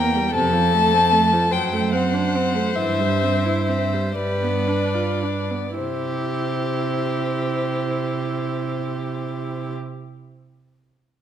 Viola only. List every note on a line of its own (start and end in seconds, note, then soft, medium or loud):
0.00 0.17 A#3 medium
0.16 0.34 G3 medium
0.35 0.55 C3 medium
0.53 0.75 F3 medium
0.74 0.95 A3 soft
0.93 1.14 C4 soft
1.13 1.34 A3 medium
1.32 1.52 F3 soft
1.53 1.75 F#3 medium
1.73 1.94 A3 medium
1.93 2.16 C4 medium
2.14 2.37 D4 soft
2.36 2.57 C4 soft
2.55 2.76 A3 soft
2.78 3.02 E3 medium
3.01 3.25 G3 soft
3.23 3.47 C4 soft
3.46 3.70 E4 soft
3.69 3.95 C4 soft
3.93 4.16 G3 soft
4.17 4.44 G3 soft
4.43 4.70 B3 soft
4.68 4.96 D4 soft
4.94 5.25 F4 soft
5.24 5.53 D4 soft
5.51 5.78 B3 soft
5.79 9.73 E4 medium